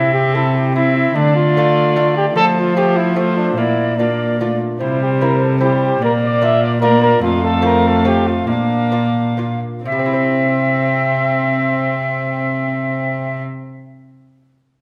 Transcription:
Already playing: lute C3, cello C3, viola C4, cornet E4, recorder E5
0.13 cornet G4
0.34 lute E4, cornet A4
0.56 cornet G4
0.74 viola C4, cornet E4, lute E4, recorder E5
0.96 cornet E4
1.14 cello D3, lute D3, viola A3, cornet D4, recorder D5
1.36 cornet F4
1.57 lute A3 D4 F4
1.96 lute A3 D4 F4
2.17 cornet G4
2.35 cello F3, lute F3, viola A3, cornet A4, recorder D5
2.42 recorder C5
2.58 cornet F4
2.76 lute A3 C4 F4, cornet G4
2.96 cornet E4
3.16 lute A3 C4 F4, viola A3, cornet F4, recorder C5
3.37 cornet D4
3.56 cello A#2, lute A#2, viola A#3, cornet E4, recorder D5
3.98 viola A#3, lute A#3 D4 F4, cornet D4, recorder D5
4.39 viola A3, lute A#3 D4 F4
4.79 cello C3, lute C3, viola G3, cornet E4, recorder C5
5.01 cornet G4
5.21 lute C4 E4, cornet A#4
5.43 cornet A4
5.59 viola G3, lute C4 E4, recorder C5
5.64 cornet G4
5.84 cornet G4
6.01 cello A#2, lute A#2, viola A#3, cornet A#4, recorder D5
6.24 cornet D5
6.42 lute A#3 D4 F4, cornet E5
6.63 cornet D5
6.81 lute A#3 D4 F4, viola A#3, cornet A#4, recorder D5
7.02 cornet A#4
7.21 lute F2, cello F2, viola A3, cornet F4, recorder F5
7.44 cornet A4
7.62 lute A3 C4 F4, cornet A#4
7.88 cornet A4
8.05 lute A3 C4 F4, cornet G4
8.27 cornet F4
8.47 lute A#2, cello A#2, viola A#3, cornet D4, recorder F5
8.92 lute A#3 D4 F4
9.37 lute A#3 D4 F4
9.84 cello C3, lute C3, viola C4, cornet C4, recorder E5
9.92 lute G3
9.99 lute C4
10.06 lute E4
10.13 lute C5

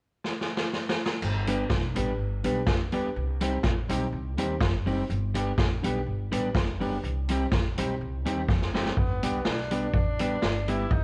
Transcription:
0.25 snare
0.41 snare
0.57 snare
0.73 snare
0.89 snare
1.06 snare
1.22 upright bass G1, crash
1.46 clean electric guitar G3 B3 D4 G4, upright piano B3 D4 G4 B4, closed hi-hat
1.70 upright bass B1, kick, snare
1.94 upright bass A1, clean electric guitar G3 B3 D4 G4, upright piano B3 D4 G4 B4, closed hi-hat
2.18 upright bass G1
2.43 upright bass B1, clean electric guitar G3 B3 D4 G4, upright piano B3 D4 G4 B4, closed hi-hat
2.67 upright bass D2, muted clean electric guitar stroke, kick, snare
2.92 clean electric guitar G3 B3 D4 G4, upright piano B3 D4 G4 B4, closed hi-hat
3.16 upright bass C2
3.40 clean electric guitar G3 C4 D#4 G4, upright piano C4 D#4 G4 C5, closed hi-hat
3.63 upright bass A1, kick, snare
3.89 upright bass B1, clean electric guitar G3 C4 D#4 G4, upright piano C4 D#4 G4 C5, closed hi-hat
4.12 upright bass C2
4.37 upright bass D#2, clean electric guitar G3 C4 D#4 G4, upright piano C4 D#4 G4 C5, closed hi-hat
4.60 upright bass F#1, upright piano G4 C5, kick, snare
4.86 clean electric guitar G3 C4 D#4 G4, upright piano C4 D#4 G4 C5, open hi-hat
5.10 upright bass G1, hi-hat pedal
5.34 clean electric guitar G3 B3 D4 G4, upright piano B3 D4 G4 B4, closed hi-hat
5.57 upright bass A1, upright piano G4 B4, kick, snare
5.82 upright bass B1, clean electric guitar G3 B3 D4 G4, upright piano B3 D4 G4 B4, closed hi-hat
6.06 upright bass G1
6.31 upright bass A1, clean electric guitar G3 B3 D4 G4, upright piano B3 D4 G4 B4, closed hi-hat
6.54 upright bass F#1, muted clean electric guitar stroke, kick, snare
6.79 clean electric guitar G3 B3 D4 G4, upright piano B3 D4 G4 B4, open hi-hat
7.03 upright bass C2, hi-hat pedal
7.28 clean electric guitar G3 C4 D#4 G4, upright piano C4 D#4 G4 C5, closed hi-hat
7.52 upright bass A1, kick, snare
7.77 upright bass B1, clean electric guitar G3 C4 D#4 G4, upright piano C4 D#4 G4 C5, closed hi-hat
8.01 upright bass C2
8.25 upright bass D#2, clean electric guitar G3 C4 D#4 G4, upright piano C4 D#4 G4 C5, closed hi-hat
8.48 upright bass F#1, upright piano G4 C5, kick, snare
8.62 snare
8.73 clean electric guitar G3 C4 D#4 G4, upright piano C4 D#4 G4 C5, snare
8.86 snare
8.97 upright bass G1, tenor saxophone B3, kick
9.22 upright bass C2, clean electric guitar G3 B3 D4 G4, upright piano B3 D4 G4 B4, closed hi-hat
9.45 upright bass B1, tenor saxophone D4, snare
9.71 clean electric guitar G3 B3 D4 G4, upright piano B3 D4 G4 B4, closed hi-hat
9.94 upright bass A1, tenor saxophone D4, upright piano G4 B4, kick
10.19 clean electric guitar G3 B3 D4 G4, upright piano B3 D4 G4 B4, closed hi-hat
10.42 upright bass G1, muted clean electric guitar stroke, snare
10.68 clean electric guitar G3 B3 D4 G4, upright piano B3 D4 G4 B4, tenor saxophone E4, closed hi-hat
10.91 upright bass C2, tenor saxophone D#4, kick

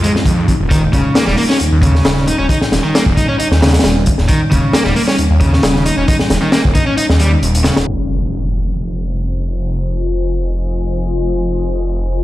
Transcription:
Already playing: detuned saw bass F2, ambient pad G#3 D#4 F4
0.04 overdriven electric guitar G#3, closed hi-hat
0.16 snare
0.25 detuned saw bass F2, kick, closed hi-hat
0.48 kick, closed hi-hat
0.60 detuned saw bass D#1
0.70 overdriven electric guitar D#3, ambient pad G3 C#4, kick, closed hi-hat
0.93 detuned saw bass D#1, overdriven electric guitar C#3, kick, closed hi-hat
1.15 overdriven electric guitar A#3, snare, closed hi-hat
1.27 detuned saw bass D#1, overdriven electric guitar G3, snare
1.38 overdriven electric guitar A#3, open hi-hat
1.49 overdriven electric guitar C#4, snare
1.60 detuned saw bass D#2, closed hi-hat
1.72 detuned saw bass D#2
1.82 overdriven electric guitar C#3, kick, closed hi-hat
1.95 snare
2.05 detuned saw bass D#1, snare, closed hi-hat
2.16 snare
2.27 overdriven electric guitar D#4, closed hi-hat
2.39 detuned saw bass D#1, overdriven electric guitar C#4
2.49 overdriven electric guitar D#4, kick, closed hi-hat
2.61 snare
2.72 detuned saw bass D#1, snare, closed hi-hat
2.84 overdriven electric guitar D#3
2.95 overdriven electric guitar A#3, snare, closed hi-hat
3.06 detuned saw bass D#1, kick
3.17 overdriven electric guitar D#4, kick, closed hi-hat
3.29 overdriven electric guitar C#4
3.39 overdriven electric guitar D#4, closed hi-hat
3.51 detuned saw bass D#2, snare
3.62 overdriven electric guitar C#3, snare, closed hi-hat
3.67 snare, closed hi-hat
3.73 snare, closed hi-hat
3.79 snare, closed hi-hat
3.84 detuned saw bass D#1, snare, closed hi-hat
4.06 kick, closed hi-hat
4.18 detuned saw bass D#1, snare
4.28 overdriven electric guitar D#3, kick, closed hi-hat
4.51 detuned saw bass D#1, overdriven electric guitar C#3, kick, closed hi-hat
4.73 overdriven electric guitar A#3, snare, closed hi-hat
4.84 detuned saw bass D#1, overdriven electric guitar G3, snare
4.96 overdriven electric guitar A#3, open hi-hat
5.08 overdriven electric guitar C#4, snare
5.19 detuned saw bass D#2, closed hi-hat
5.30 detuned saw bass D#2
5.41 overdriven electric guitar C#3, kick, closed hi-hat
5.53 snare
5.63 detuned saw bass D#1, snare, closed hi-hat
5.76 snare
5.86 overdriven electric guitar D#4, closed hi-hat
5.97 detuned saw bass D#1, overdriven electric guitar C#4
6.08 overdriven electric guitar D#4, kick, closed hi-hat
6.19 snare
6.30 detuned saw bass D#1, snare, closed hi-hat
6.42 overdriven electric guitar D#3
6.52 overdriven electric guitar A#3, snare, closed hi-hat
6.65 detuned saw bass D#1, kick
6.75 overdriven electric guitar D#4, kick, closed hi-hat
6.87 overdriven electric guitar C#4
6.97 overdriven electric guitar D#4, closed hi-hat
7.09 detuned saw bass D#2, snare
7.20 overdriven electric guitar G3, closed hi-hat
7.42 detuned saw bass D#1, closed hi-hat
7.55 closed hi-hat
7.64 overdriven electric guitar C#3, snare, closed hi-hat
7.77 detuned saw bass D#1, snare, closed hi-hat
7.86 detuned saw bass F1, ambient pad F4 C5 D#5 G#5, impact

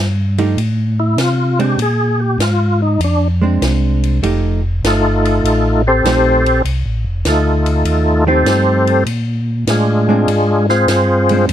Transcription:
Already playing: tonewheel organ G2
0.38 hollow-body jazz guitar F3 A3 D#4 G4, ride
0.57 tonewheel organ A2, ride
1.00 tonewheel organ E4
1.16 tonewheel organ C3 F4, snare, hi-hat pedal, ride
1.59 hollow-body jazz guitar G#3 C4 D4, tonewheel organ G4, ride
1.78 tonewheel organ A#2, ride
1.82 tonewheel organ G#4
2.20 tonewheel organ G4
2.38 tonewheel organ G#2 F4, snare, hi-hat pedal, ride
2.82 tonewheel organ D#4
2.99 tonewheel organ F2, ride
3.04 tonewheel organ D4
3.42 hollow-body jazz guitar G#3 C4 D4
3.61 tonewheel organ C2, snare, hi-hat pedal, ride
4.04 ride
4.22 tonewheel organ F1, hollow-body jazz guitar F3 A3 D#4 G4, ride
4.82 tonewheel organ G1 A3 A4, snare, hi-hat pedal, ride
4.87 tonewheel organ D#4 F4
5.25 ride
5.43 tonewheel organ A1, ride
5.87 tonewheel organ C4 G4 A4 C5
6.03 tonewheel organ A#1, hollow-body jazz guitar F3 A3 D#4 G4, snare, hi-hat pedal, ride
6.46 ride
6.64 tonewheel organ C2, ride
6.86 tonewheel organ A1
7.04 tonewheel organ F1
7.25 tonewheel organ D2 A3 D#4 F4 A4, snare, hi-hat pedal, ride
7.66 ride
7.85 tonewheel organ D#2, ride
8.27 hollow-body jazz guitar F3 A3 D#4 G4, tonewheel organ C4 G4 A4 C5
8.45 tonewheel organ G2, snare, hi-hat pedal, ride
8.87 ride
9.06 tonewheel organ A#2, ride
9.67 tonewheel organ A2 G#3 D4 F4 G#4, snare, hi-hat pedal, ride
10.09 hollow-body jazz guitar G#3 C4 D4
10.28 tonewheel organ G#2, ride
10.69 tonewheel organ C4 F4 G#4 C5, snare
10.87 tonewheel organ G2, snare, hi-hat pedal, ride
11.29 hollow-body jazz guitar G#3 C4 D4, ride
11.49 tonewheel organ F2, ride

